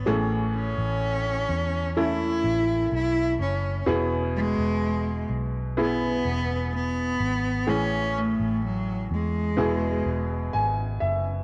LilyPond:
<<
  \new Staff \with { instrumentName = "Upright piano" } { \time 4/4 \key e \major \tempo 4 = 63 << { r1 | r1 | r2. gis''8 e''8 | } \\ { <a cis' gis'>2 <a cis' e'>2 | <b e' gis'>2 <b e' gis'>2 | <cis' gis'>2 <b e' gis'>2 | } >> }
  \new Staff \with { instrumentName = "Upright piano" } { \clef bass \time 4/4 \key e \major <a, e>4. r2 r8 | b,4. r2 r8 | <a, e>4. r8 b,4. r8 | }
  \new Staff \with { instrumentName = "Cello" } { \time 4/4 \key e \major r8 cis'4. e'4 e'8 cis'8 | r8 gis4 r8 b4 b4 | cis'8 a8 fis8 gis4. r4 | }
  \new Staff \with { instrumentName = "Fingered electric bass" } { \clef bass \time 4/4 \key e \major a,,8. a,,8. e,4 a,,8 b,,8 fis,,8 | e,,8. e,,8. b,,4 e,,4 gis,,8 | a,,8. a,,8. e,8 e,,8 e,,8 gis,,8 fis,,8 | }
>>